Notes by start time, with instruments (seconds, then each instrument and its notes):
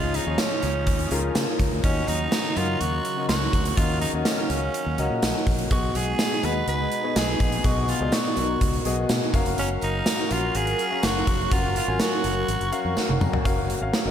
Already playing: fingered electric bass C#2, grand piano C#3 C#4 F4 G#4 D#5, analog synth pad C#3 F3 D#4, tenor saxophone F4
0.14 tenor saxophone D#4, closed hi-hat, tambourine
0.26 fingered electric bass D#2, grand piano C#4 F4 G#4 C#5
0.38 tenor saxophone C#4, snare, closed hi-hat, tambourine
0.62 fingered electric bass C#2, closed hi-hat, tambourine
0.87 fingered electric bass D#2, kick, closed hi-hat
0.99 closed hi-hat
1.11 fingered electric bass C#2, grand piano C#4 F4 G#4 A#4, closed hi-hat, tambourine
1.35 fingered electric bass C#3, snare, closed hi-hat, tambourine
1.59 fingered electric bass C#2, kick, closed hi-hat, tambourine
1.72 fingered electric bass D2
1.83 fingered electric bass D#2, grand piano D#3 C#4 F#4 A#4 D#5, analog synth pad F#3 D#4, tenor saxophone C#4, kick, closed hi-hat, tambourine
2.07 fingered electric bass D#2, tenor saxophone D#4, closed hi-hat, tambourine
2.32 snare, closed hi-hat, tambourine
2.56 fingered electric bass F#2, grand piano C#4 F#4 A#4 D#5, tenor saxophone F4, closed hi-hat, tambourine
2.80 fingered electric bass D#2, tenor saxophone F#4, closed hi-hat, tambourine
3.04 closed hi-hat, tambourine
3.17 grand piano C#4 F#4 A#4 D#5
3.28 fingered electric bass C#2, tenor saxophone F#4, snare, closed hi-hat, tambourine
3.53 fingered electric bass D2, kick, closed hi-hat, tambourine
3.65 closed hi-hat
3.77 fingered electric bass D#2, grand piano D#3 C#4 F#4 A#4 D#5, tenor saxophone F4, analog synth pad F5, kick, closed hi-hat, tambourine
4.01 tenor saxophone D#4, closed hi-hat, tambourine
4.13 fingered electric bass D#2, grand piano C#4 F#4 A#4 D#5
4.25 tenor saxophone C#4, snare, closed hi-hat, tambourine
4.50 fingered electric bass C#2, closed hi-hat, tambourine
4.74 closed hi-hat
4.86 fingered electric bass D#2
4.98 fingered electric bass C#2, grand piano C#4 F#4 A#4 D#5, closed hi-hat, tambourine
5.10 fingered electric bass A#2
5.22 fingered electric bass A#1, snare, closed hi-hat, tambourine
5.47 fingered electric bass A#1, kick, open hi-hat, tambourine
5.59 closed hi-hat
5.71 fingered electric bass B1, analog synth pad B2 G#3 D#4, grand piano B2 B3 F#4 G#4 D#5, tenor saxophone F#4, kick, closed hi-hat, tambourine
5.95 fingered electric bass B1, tenor saxophone G#4, closed hi-hat, tambourine
6.19 snare, closed hi-hat, tambourine
6.43 fingered electric bass D#2, grand piano B3 F#4 G#4 D#5, tenor saxophone B4, closed hi-hat, tambourine
6.67 fingered electric bass C#2, tenor saxophone B4, closed hi-hat, tambourine
6.91 closed hi-hat, tambourine
7.03 grand piano B3 F#4 G#4 D#5
7.16 fingered electric bass B1, tenor saxophone G#4, snare, closed hi-hat, tambourine
7.40 fingered electric bass A#1, kick, closed hi-hat, tambourine
7.52 closed hi-hat
7.64 fingered electric bass B1, grand piano B2 B3 F#4 G#4 D#5, tenor saxophone F#4, analog synth pad A#4, kick, closed hi-hat, tambourine
7.88 tenor saxophone F4, closed hi-hat, tambourine
8.01 fingered electric bass C#2, grand piano B3 F#4 G#4 D5
8.08 grand piano D#5
8.12 tenor saxophone F#4, snare, closed hi-hat, tambourine
8.36 fingered electric bass B1, closed hi-hat, tambourine
8.61 fingered electric bass C#2, kick, closed hi-hat, tambourine
8.73 closed hi-hat
8.85 fingered electric bass B1, grand piano B3 F#4 G#4 D#5, closed hi-hat, tambourine
9.09 fingered electric bass B2, snare, closed hi-hat, tambourine
9.33 fingered electric bass F#1, analog synth pad F#3 F#4, grand piano C#4 F#4 A#4 F5, kick, closed hi-hat, tambourine
9.46 fingered electric bass F1, closed hi-hat
9.58 fingered electric bass F#1, tenor saxophone C#4, closed hi-hat, tambourine
9.81 fingered electric bass F#1, tenor saxophone D#4, closed hi-hat, tambourine
10.06 snare, closed hi-hat, tambourine
10.30 fingered electric bass A#1, grand piano C#4 F#4 A#4 F5, tenor saxophone F4, closed hi-hat, tambourine
10.55 fingered electric bass G#1, tenor saxophone G#4, closed hi-hat
10.67 closed hi-hat
10.78 closed hi-hat, tambourine
10.90 grand piano C#4 F#4 A#4 F5
11.03 fingered electric bass F#1, tenor saxophone F#4, snare, closed hi-hat, tambourine
11.27 fingered electric bass F1, kick, closed hi-hat, tambourine
11.51 fingered electric bass F#1, grand piano C#4 F#4 A#4 F#5, tenor saxophone F4, kick, closed hi-hat, tambourine
11.76 tenor saxophone F4, closed hi-hat, tambourine
11.87 fingered electric bass G#1, grand piano C#4 F#4 A#4 G#5
11.99 tenor saxophone F#4, snare, closed hi-hat, tambourine
12.24 fingered electric bass F#1, closed hi-hat, tambourine
12.48 fingered electric bass G#1, closed hi-hat, tambourine
12.61 fingered electric bass F#1, closed hi-hat
12.72 grand piano C#4 F#4 A#4 F5, closed hi-hat, tambourine
12.85 fingered electric bass F2
12.97 grand piano F#5, muted fingered electric bass stroke, snare, tambourine
13.09 fingered electric bass F#1, high tom
13.21 fingered electric bass F#2, grand piano A#5, mid tom, tambourine
13.33 floor tom
13.44 fingered electric bass F#1, analog synth pad F#3 A#3 F#4, grand piano C#4 F#4 A#4 F5, kick, closed hi-hat
13.70 closed hi-hat
13.81 fingered electric bass G#1, grand piano C#4 F#4 A#4 F5
13.93 snare, closed hi-hat
14.05 fingered electric bass F#1, grand piano C#4 F#4 A#4 D#5